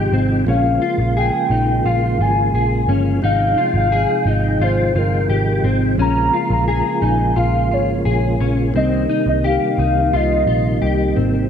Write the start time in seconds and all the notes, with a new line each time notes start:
Already playing: C3 F3 G#3 D#4 G4 D#5 G5
0.12 G#1 C4
0.47 A#1 C#3 G#3 A#3 C#4 F4 F5
0.82 F4
0.98 A#1
1.17 G#4 G5
1.50 A#1 D#4
1.85 A#1 F4 F5
2.19 G#1 F4 G#5
2.54 A#1 G#4
2.88 G1 C#4
3.22 G#1 C3 F3 D#4 F5 G5
3.58 F4
3.74 G#1 F5
3.92 G#4
4.26 G#1 D#4 D#5
4.60 G#1 F4 C5
4.95 G1 F4 A#4
5.29 G#1 G4
5.63 G#1 C4
5.98 A#1 C#3 A#3 C#4 F4 A#5
6.34 F4
6.50 A#1 A#5
6.68 G#4
7.02 A#1 D#4 G#5
7.36 A#1 F4 F5
7.71 G#1 F4 C#5
8.05 A#1 G#4
8.40 A#1 C#4
8.74 C2 C3 D#3 G3 C4 D#4 D#5
9.09 D#4
9.26 C2 D#5
9.44 G4 F5
9.78 C2 D#4
10.13 C2 F4 D#5
10.47 A#1 F4
10.82 C2 G4
11.16 G#1 C4